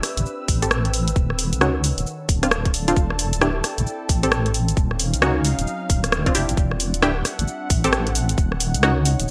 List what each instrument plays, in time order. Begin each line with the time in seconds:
Already playing: ambient pad D4 G4 E5, analog synth pad B4 E6
0.03 ambient pad C4, cross-stick, open hi-hat, cabasa
0.17 wobble bass A1, ambient pad G5, closed hi-hat, cabasa
0.26 cabasa
0.33 ambient pad A4
0.48 wobble bass A1, kick, open hi-hat, cabasa
0.62 synth stab C4 G4 A4, closed hi-hat, cabasa
0.71 cross-stick, cabasa
0.85 closed hi-hat
0.94 open hi-hat, cabasa
1.08 closed hi-hat, cabasa
1.16 wobble bass D#1, ambient pad D#3, kick, cabasa
1.30 cross-stick
1.39 ambient pad F#5, open hi-hat, cabasa
1.52 wobble bass C#2, closed hi-hat, cabasa
1.61 synth stab C#4 D#4 F#4, cross-stick, cabasa
1.84 open hi-hat, cabasa
1.98 wobble bass D#1, closed hi-hat, cabasa
2.06 ambient pad D4, analog synth pad A4 A5, cabasa
2.29 wobble bass D1, kick, open hi-hat, cabasa
2.43 synth stab C4 D4 F4, cross-stick, closed hi-hat, cabasa
2.51 cross-stick, cabasa
2.65 kick, closed hi-hat
2.74 open hi-hat, cabasa
2.88 synth stab C4 D4 F4, closed hi-hat, cabasa
2.96 wobble bass E1, ambient pad E4, kick, cabasa
3.10 cross-stick
3.19 ambient pad D5, open hi-hat, cabasa
3.29 ambient pad G5
3.33 wobble bass D1, closed hi-hat, cabasa
3.41 synth stab D4 E4 G4, cross-stick, cabasa
3.64 ambient pad C4, cross-stick, open hi-hat, cabasa
3.78 wobble bass A1, closed hi-hat, cabasa
3.87 cabasa
4.05 wobble bass A1, ambient pad A4, kick, open hi-hat, cabasa
4.23 synth stab C4 G4 A4, closed hi-hat, cabasa
4.32 cross-stick, cabasa
4.46 closed hi-hat
4.54 open hi-hat, cabasa
4.68 closed hi-hat, cabasa
4.77 wobble bass D#1, ambient pad C#4, analog synth pad D#4 F5, kick, cabasa
4.91 cross-stick
4.96 ambient pad F#3, open hi-hat, cabasa
5.13 wobble bass C#2, closed hi-hat, cabasa
5.22 synth stab C#4 D#4 F#4, cross-stick, cabasa
5.45 open hi-hat, cabasa
5.59 wobble bass D#1, closed hi-hat, cabasa
5.67 ambient pad C4, cabasa
5.89 wobble bass D1, ambient pad F4, kick, open hi-hat, cabasa
6.04 cross-stick, closed hi-hat, cabasa
6.09 ambient pad D5, cross-stick, cabasa
6.26 synth stab C4 D4 F4, kick, closed hi-hat
6.35 wobble bass F1, synth stab D4 E4 G4, open hi-hat, cabasa
6.49 wobble bass A1, closed hi-hat, cabasa
6.57 wobble bass E1, ambient pad D4, analog synth pad F#5, kick, cabasa
6.71 cross-stick
6.78 ambient pad G3 E5, open hi-hat, cabasa
6.94 wobble bass D1, closed hi-hat, cabasa
7.02 synth stab D4 E4 G4, cross-stick, cabasa
7.25 ambient pad C4, cross-stick, open hi-hat, cabasa
7.39 wobble bass A1, closed hi-hat, cabasa
7.48 cabasa
7.68 wobble bass A1, ambient pad A4, kick, open hi-hat, cabasa
7.84 synth stab C4 G4 A4, closed hi-hat, cabasa
7.93 cross-stick, cabasa
8.07 closed hi-hat
8.15 open hi-hat, cabasa
8.29 closed hi-hat, cabasa
8.38 wobble bass D#1, ambient pad D#4, kick, cabasa
8.52 cross-stick
8.59 ambient pad F#5, open hi-hat, cabasa
8.66 ambient pad C#5
8.74 wobble bass C#2, closed hi-hat, cabasa
8.83 synth stab C#4 D#4 F#4, cross-stick, cabasa
9.05 open hi-hat, cabasa
9.20 wobble bass D#1, closed hi-hat, cabasa